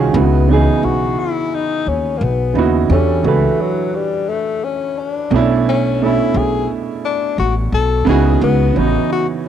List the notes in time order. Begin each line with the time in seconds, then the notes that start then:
Already playing: C2 D#3 C#4 F4 F#4 G#4
0.13 C#2 C#3 B3 D#4 E4
0.18 F#4
0.48 C#3 E3 B3 D#4
0.53 G#4
0.83 B1 F#4
1.20 E4
1.54 D#4
1.86 D#2 C#4
2.18 B1 A#3
2.23 B3
2.54 D#2 C#3 B3 D#4 E4
2.59 F#4
2.88 E2 E3 C#4 D4 F#4 G4
2.93 A4
3.23 C#2 E3 A3 D4 F#4 A4
3.28 B4
3.61 F#3
3.95 G3
4.30 A3
4.64 C#4
4.99 C#4
5.10 D4
5.31 B1 B2 A3 C#4 D4
5.36 E4
5.69 C#4
6.00 B2 A3 C#4 E4
6.04 D4 E4
6.34 B1 G#4
7.05 D4
7.38 A1 F#4
7.72 B1 A4
8.05 C#2 C#3 B3 D#4 G#4
8.09 E4 F#4
8.41 C#2 B3
8.74 A1 C#3 E3 B3 D#4
8.78 D#4 F#4
9.12 F#4